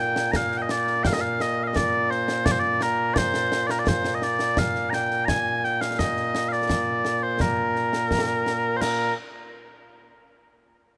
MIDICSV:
0, 0, Header, 1, 3, 480
1, 0, Start_track
1, 0, Key_signature, -2, "major"
1, 0, Tempo, 705882
1, 231, Time_signature, 4, 2, 24, 8
1, 7463, End_track
2, 0, Start_track
2, 0, Title_t, "Bagpipes"
2, 0, Program_c, 0, 109
2, 0, Note_on_c, 0, 46, 89
2, 0, Note_on_c, 0, 58, 89
2, 0, Note_on_c, 0, 79, 93
2, 215, Note_off_c, 0, 79, 0
2, 215, Note_on_c, 0, 82, 94
2, 245, Note_off_c, 0, 82, 0
2, 245, Note_on_c, 0, 77, 94
2, 391, Note_off_c, 0, 77, 0
2, 391, Note_on_c, 0, 79, 59
2, 421, Note_off_c, 0, 79, 0
2, 421, Note_on_c, 0, 75, 59
2, 483, Note_off_c, 0, 75, 0
2, 483, Note_on_c, 0, 74, 91
2, 704, Note_off_c, 0, 74, 0
2, 704, Note_on_c, 0, 79, 99
2, 727, Note_off_c, 0, 79, 0
2, 727, Note_on_c, 0, 77, 99
2, 770, Note_off_c, 0, 77, 0
2, 770, Note_on_c, 0, 75, 87
2, 823, Note_off_c, 0, 75, 0
2, 823, Note_on_c, 0, 77, 109
2, 962, Note_off_c, 0, 77, 0
2, 962, Note_on_c, 0, 75, 101
2, 1111, Note_off_c, 0, 75, 0
2, 1111, Note_on_c, 0, 77, 69
2, 1139, Note_off_c, 0, 77, 0
2, 1139, Note_on_c, 0, 75, 69
2, 1196, Note_off_c, 0, 75, 0
2, 1196, Note_on_c, 0, 74, 103
2, 1433, Note_off_c, 0, 74, 0
2, 1433, Note_on_c, 0, 72, 89
2, 1671, Note_off_c, 0, 72, 0
2, 1671, Note_on_c, 0, 74, 108
2, 1711, Note_off_c, 0, 74, 0
2, 1711, Note_on_c, 0, 72, 92
2, 1766, Note_off_c, 0, 72, 0
2, 1766, Note_on_c, 0, 74, 103
2, 1920, Note_off_c, 0, 74, 0
2, 1920, Note_on_c, 0, 70, 92
2, 2135, Note_off_c, 0, 70, 0
2, 2135, Note_on_c, 0, 74, 104
2, 2162, Note_off_c, 0, 74, 0
2, 2162, Note_on_c, 0, 72, 104
2, 2496, Note_off_c, 0, 72, 0
2, 2496, Note_on_c, 0, 74, 87
2, 2521, Note_off_c, 0, 74, 0
2, 2521, Note_on_c, 0, 70, 87
2, 2578, Note_off_c, 0, 70, 0
2, 2578, Note_on_c, 0, 74, 63
2, 2641, Note_off_c, 0, 74, 0
2, 2641, Note_on_c, 0, 72, 94
2, 2821, Note_off_c, 0, 72, 0
2, 2821, Note_on_c, 0, 75, 60
2, 2878, Note_off_c, 0, 75, 0
2, 2878, Note_on_c, 0, 74, 97
2, 3117, Note_off_c, 0, 74, 0
2, 3117, Note_on_c, 0, 77, 101
2, 3333, Note_off_c, 0, 77, 0
2, 3333, Note_on_c, 0, 82, 91
2, 3358, Note_off_c, 0, 82, 0
2, 3358, Note_on_c, 0, 79, 91
2, 3571, Note_off_c, 0, 79, 0
2, 3571, Note_on_c, 0, 82, 121
2, 3594, Note_off_c, 0, 82, 0
2, 3594, Note_on_c, 0, 80, 121
2, 3837, Note_off_c, 0, 80, 0
2, 3837, Note_on_c, 0, 79, 95
2, 3951, Note_off_c, 0, 79, 0
2, 3951, Note_on_c, 0, 77, 95
2, 4073, Note_off_c, 0, 77, 0
2, 4073, Note_on_c, 0, 75, 99
2, 4410, Note_off_c, 0, 75, 0
2, 4410, Note_on_c, 0, 77, 82
2, 4436, Note_off_c, 0, 77, 0
2, 4436, Note_on_c, 0, 74, 82
2, 4918, Note_off_c, 0, 74, 0
2, 4918, Note_on_c, 0, 72, 82
2, 5039, Note_off_c, 0, 72, 0
2, 5039, Note_on_c, 0, 70, 87
2, 5960, Note_off_c, 0, 70, 0
2, 5960, Note_on_c, 0, 72, 94
2, 5990, Note_off_c, 0, 72, 0
2, 5990, Note_on_c, 0, 70, 94
2, 6214, Note_off_c, 0, 46, 0
2, 6214, Note_off_c, 0, 58, 0
2, 6214, Note_off_c, 0, 70, 0
2, 7463, End_track
3, 0, Start_track
3, 0, Title_t, "Drums"
3, 110, Note_on_c, 9, 38, 91
3, 178, Note_off_c, 9, 38, 0
3, 228, Note_on_c, 9, 35, 55
3, 228, Note_on_c, 9, 38, 92
3, 296, Note_off_c, 9, 35, 0
3, 296, Note_off_c, 9, 38, 0
3, 351, Note_on_c, 9, 38, 31
3, 419, Note_off_c, 9, 38, 0
3, 471, Note_on_c, 9, 38, 93
3, 539, Note_off_c, 9, 38, 0
3, 591, Note_on_c, 9, 38, 28
3, 659, Note_off_c, 9, 38, 0
3, 711, Note_on_c, 9, 35, 60
3, 711, Note_on_c, 9, 38, 104
3, 779, Note_off_c, 9, 35, 0
3, 779, Note_off_c, 9, 38, 0
3, 954, Note_on_c, 9, 38, 72
3, 1022, Note_off_c, 9, 38, 0
3, 1195, Note_on_c, 9, 35, 61
3, 1195, Note_on_c, 9, 38, 101
3, 1263, Note_off_c, 9, 35, 0
3, 1263, Note_off_c, 9, 38, 0
3, 1436, Note_on_c, 9, 38, 31
3, 1504, Note_off_c, 9, 38, 0
3, 1553, Note_on_c, 9, 38, 84
3, 1621, Note_off_c, 9, 38, 0
3, 1671, Note_on_c, 9, 35, 63
3, 1671, Note_on_c, 9, 38, 111
3, 1739, Note_off_c, 9, 35, 0
3, 1739, Note_off_c, 9, 38, 0
3, 1909, Note_on_c, 9, 38, 79
3, 1977, Note_off_c, 9, 38, 0
3, 2148, Note_on_c, 9, 35, 63
3, 2148, Note_on_c, 9, 38, 106
3, 2216, Note_off_c, 9, 35, 0
3, 2216, Note_off_c, 9, 38, 0
3, 2271, Note_on_c, 9, 38, 74
3, 2339, Note_off_c, 9, 38, 0
3, 2393, Note_on_c, 9, 38, 91
3, 2461, Note_off_c, 9, 38, 0
3, 2512, Note_on_c, 9, 38, 68
3, 2580, Note_off_c, 9, 38, 0
3, 2630, Note_on_c, 9, 35, 64
3, 2630, Note_on_c, 9, 38, 104
3, 2698, Note_off_c, 9, 35, 0
3, 2698, Note_off_c, 9, 38, 0
3, 2750, Note_on_c, 9, 38, 72
3, 2818, Note_off_c, 9, 38, 0
3, 2869, Note_on_c, 9, 38, 61
3, 2937, Note_off_c, 9, 38, 0
3, 2987, Note_on_c, 9, 38, 71
3, 3055, Note_off_c, 9, 38, 0
3, 3107, Note_on_c, 9, 35, 62
3, 3107, Note_on_c, 9, 38, 97
3, 3175, Note_off_c, 9, 35, 0
3, 3175, Note_off_c, 9, 38, 0
3, 3231, Note_on_c, 9, 38, 30
3, 3299, Note_off_c, 9, 38, 0
3, 3352, Note_on_c, 9, 38, 78
3, 3420, Note_off_c, 9, 38, 0
3, 3473, Note_on_c, 9, 38, 30
3, 3541, Note_off_c, 9, 38, 0
3, 3592, Note_on_c, 9, 35, 56
3, 3592, Note_on_c, 9, 38, 94
3, 3660, Note_off_c, 9, 35, 0
3, 3660, Note_off_c, 9, 38, 0
3, 3836, Note_on_c, 9, 38, 30
3, 3904, Note_off_c, 9, 38, 0
3, 3954, Note_on_c, 9, 38, 83
3, 4022, Note_off_c, 9, 38, 0
3, 4075, Note_on_c, 9, 35, 57
3, 4075, Note_on_c, 9, 38, 101
3, 4143, Note_off_c, 9, 35, 0
3, 4143, Note_off_c, 9, 38, 0
3, 4194, Note_on_c, 9, 38, 28
3, 4262, Note_off_c, 9, 38, 0
3, 4316, Note_on_c, 9, 38, 90
3, 4384, Note_off_c, 9, 38, 0
3, 4436, Note_on_c, 9, 38, 27
3, 4504, Note_off_c, 9, 38, 0
3, 4553, Note_on_c, 9, 35, 55
3, 4553, Note_on_c, 9, 38, 99
3, 4621, Note_off_c, 9, 35, 0
3, 4621, Note_off_c, 9, 38, 0
3, 4792, Note_on_c, 9, 38, 69
3, 4860, Note_off_c, 9, 38, 0
3, 5031, Note_on_c, 9, 35, 64
3, 5031, Note_on_c, 9, 38, 86
3, 5099, Note_off_c, 9, 35, 0
3, 5099, Note_off_c, 9, 38, 0
3, 5274, Note_on_c, 9, 38, 34
3, 5342, Note_off_c, 9, 38, 0
3, 5394, Note_on_c, 9, 38, 76
3, 5462, Note_off_c, 9, 38, 0
3, 5513, Note_on_c, 9, 35, 57
3, 5513, Note_on_c, 9, 38, 101
3, 5581, Note_off_c, 9, 35, 0
3, 5581, Note_off_c, 9, 38, 0
3, 5756, Note_on_c, 9, 38, 76
3, 5824, Note_off_c, 9, 38, 0
3, 5994, Note_on_c, 9, 38, 88
3, 5994, Note_on_c, 9, 49, 84
3, 6062, Note_off_c, 9, 38, 0
3, 6062, Note_off_c, 9, 49, 0
3, 7463, End_track
0, 0, End_of_file